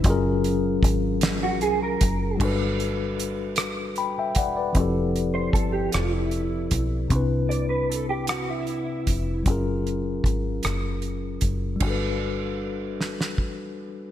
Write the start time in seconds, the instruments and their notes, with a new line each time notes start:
0.03 fingered electric bass F#1, tine electric piano F#3 C#4 F4, kick, closed hi-hat
0.09 tine electric piano G#4 A#4
0.44 closed hi-hat
0.83 fingered electric bass G#1, kick, closed hi-hat
1.21 snare, closed hi-hat
1.43 clean electric guitar F#4
1.61 fingered electric bass C2, clean electric guitar G#4, closed hi-hat
1.83 clean electric guitar A#4
2.01 fingered electric bass F#1, kick, closed hi-hat
2.37 fingered electric bass G1, tine electric piano G3 D4, kick, crash
2.41 tine electric piano F#4 A4 B4
2.80 closed hi-hat
3.20 closed hi-hat
3.56 cross-stick, closed hi-hat
3.96 tine electric piano G5 B5, closed hi-hat
4.19 tine electric piano E5 G5
4.35 fingered electric bass E1, tine electric piano D5 F#5, kick, closed hi-hat
4.57 tine electric piano B4 D5
4.73 fingered electric bass F1, tine electric piano F3 C4 E4, kick, closed hi-hat
4.78 tine electric piano G4 A4
5.16 closed hi-hat
5.34 clean electric guitar C5
5.53 fingered electric bass G1, clean electric guitar A4, kick, closed hi-hat
5.72 clean electric guitar G4
5.91 fingered electric bass F1, clean electric guitar F4, cross-stick, closed hi-hat
6.12 clean electric guitar E4
6.31 closed hi-hat
6.71 fingered electric bass B1, kick, closed hi-hat
7.08 fingered electric bass C2, tine electric piano C3 C4 D4, kick, closed hi-hat
7.14 tine electric piano E4 B4
7.49 clean electric guitar D5, closed hi-hat
7.69 clean electric guitar B4
7.89 clean electric guitar A4, closed hi-hat
8.09 clean electric guitar G4
8.27 clean electric guitar F#4, cross-stick, closed hi-hat
8.49 clean electric guitar E4
8.67 closed hi-hat
9.07 fingered electric bass F1, kick, closed hi-hat
9.43 fingered electric bass F#1, tine electric piano F#3 C#4 F4, kick, closed hi-hat
9.50 tine electric piano G#4 A#4
9.87 closed hi-hat
10.24 fingered electric bass G#1, kick, closed hi-hat
10.63 fingered electric bass F#1, cross-stick, closed hi-hat
11.02 closed hi-hat
11.41 fingered electric bass F#1, kick, closed hi-hat
11.76 tine electric piano G3
11.80 fingered electric bass G1, tine electric piano D4 F#4, kick, crash
11.87 tine electric piano A4 B4
13.01 snare
13.21 snare
13.38 kick